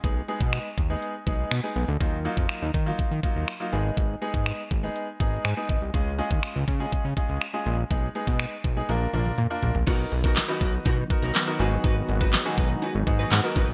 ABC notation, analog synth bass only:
X:1
M:4/4
L:1/16
Q:1/4=122
K:Abdor
V:1 name="Analog synth bass" clef=bass
C,,2 z C,2 z E,,2 z2 C,,2 C, z C,, =D,, | E,,3 F,, z E,, E,2 E, E, z E,, z2 A,,,2 | A,,,2 z A,,2 z A,,,2 z2 A,,,2 A,, z A,,, =C,, | D,,3 E,, z D,, D,2 D, D, z D,, z2 B,,,2 |
C,,2 z C,2 z C,,2 B,,,2 B,,,2 B,, z B,,, B,,, | =B,,,2 B,,,3 z B,,,2 =B,,2 z B,,, z2 A,,,2 | A,,,2 A,,,3 z C,,2 z A,,, A,,2 A,, z A,,, B,,, |]